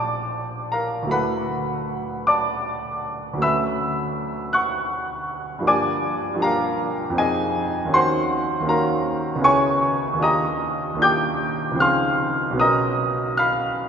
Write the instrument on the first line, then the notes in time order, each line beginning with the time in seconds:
grand piano
Already playing: A#1 F3 A3 D4 G4 C5 D5 G5 A5 C6 D6
0.72 A#4 F5 A#5
1.03 D2 F#3 A3
1.09 E4 A4 B4 F#5 B5
2.27 D5 A5 D6
3.34 D2 F#3
3.38 A3 C#4 B4 E6
3.43 E5 B5
4.53 F#5 C#6 F#6
5.59 G2 F3 A#3
5.65 D4 G4 D5 G#5 D6
6.34 G2 F3
6.38 A#3 D4 G4
6.42 A#4 F5 A#5
7.10 F2 F3 C4
7.15 D#4 G#4 D#5 G#5
7.85 D#2 A#3 C#4
7.91 D#4 F#4 C5 F#5 C6
8.60 D#2 A#3
8.65 C#4 D#4 F#4 A#5
8.70 A#4 F5
9.36 C#2 B3 C#4
9.42 E4 G#4 C#5 G#5 C#6
10.14 D#2 A#3
10.18 D4 F4
10.22 G4 D#5 A#5 D#6
10.94 D#2 A#3
10.98 D4 F4
11.02 G4 G5 D6 G6
11.72 C#2 F3
11.76 C4 D#4
11.80 G#4 F5 C6 F6
12.51 B1 F#3
12.55 B3 C#4 A#4
12.60 D#5 A#5 D#6
13.37 F5 B5 F6